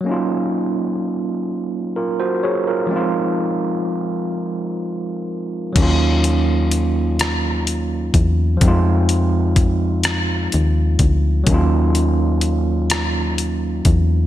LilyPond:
<<
  \new Staff \with { instrumentName = "Tine electric piano" } { \time 6/8 \key ees \dorian \tempo 4. = 42 << { r2 <f' bes'>16 <ges' c''>16 <aes' des''>16 <f' bes'>16~ | <f' bes'>16 r2 r8. | r2. | r2. |
r2. | } \\ { <ges bes des' ees' f'>2. | <f aes c' ees' f'>2. | <ges bes des' ees' f'>2. | <f g aes c' ees' f'>2. |
<ges bes des' ees' f'>2. | } >> }
  \new Staff \with { instrumentName = "FM bass" } { \clef bass \time 6/8 \key ees \dorian r2. | r2. | ees,2~ ees,8 fes,8 | f,2 ees,8 d,8 |
ees,2~ ees,8 fes,8 | }
  \new DrumStaff \with { instrumentName = "Drums" } \drummode { \time 6/8 r4. r4. | r4. r4. | <cymc hh bd>8 hh8 hh8 <hh ss>8 hh8 <hh bd>8 | <hh bd>8 hh8 <hh bd>8 <hh ss>8 hh8 <hh bd>8 |
<hh bd>8 hh8 hh8 <hh ss>8 hh8 <hh bd>8 | }
>>